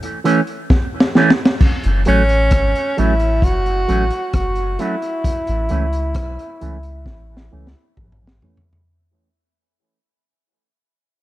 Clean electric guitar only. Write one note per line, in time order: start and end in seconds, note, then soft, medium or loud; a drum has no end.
0.24 0.39 E3 medium
0.24 0.40 A3 medium
0.24 0.40 C#4 loud
1.15 1.30 E3 medium
1.15 1.31 A3 medium
1.15 1.31 C#4 loud
1.39 muted clean electric guitar stroke soft
2.06 2.21 F#3 medium
2.06 2.22 A3 medium
2.06 2.22 C#4 medium
2.97 3.12 F#3 medium
2.97 3.13 A3 medium
2.97 3.13 C#4 medium
3.88 4.03 F#3 medium
3.88 4.04 A3 medium
3.88 4.04 C#4 medium
4.79 4.94 F#3 medium
4.79 4.94 A3 medium
4.79 4.95 C#4 medium
5.02 muted clean electric guitar stroke soft
5.70 5.85 E3 medium
5.70 5.85 A3 medium
5.70 5.86 C#4 medium
6.61 6.76 E3 medium
6.61 6.76 A3 medium
6.61 6.77 C#4 medium
7.52 7.67 E3 medium
7.52 7.67 A3 medium
7.52 7.67 C#4 medium
8.42 8.58 E3 medium
8.42 8.58 A3 medium
8.42 8.58 C#4 loud